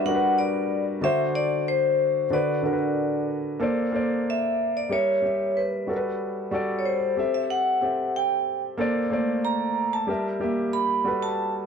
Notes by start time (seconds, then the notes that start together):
Already playing: G3 D4 F#4 B4
0.05 G3 D4 F#4 A#4 F#5
0.15 B4
0.39 D5
1.01 D3 D4 F#4 C5 E5
1.35 D5
1.68 C5
2.30 D3 D4 F#4 B4 D5
2.63 D3 D4 F#4 A#4
2.73 B4
3.60 A#3 A4 C5 D5
3.92 A#3 A4 C5 D5
4.30 E5
4.77 D5
4.89 G3 G4 A#4 C#5 E5
5.22 G3 G4 E5
5.57 B4
5.87 G3 F#4 A4 A#4
5.97 B4
6.51 G3 F#4 A4 D5
6.79 C#5
6.85 C5
7.16 C4 G4 A4 E5
7.34 E5
7.50 F#5
7.81 C4 G4 A4 E5
8.16 G5
8.77 A#3 A4 C5 D5
9.10 A3 A#3 C5 D5
9.45 A#5
9.93 A5
10.07 G3 G4 A#4 E5
10.40 G3 A#3 G4 E5
10.73 B5
11.04 G3 F#4 A4 B4
11.23 A5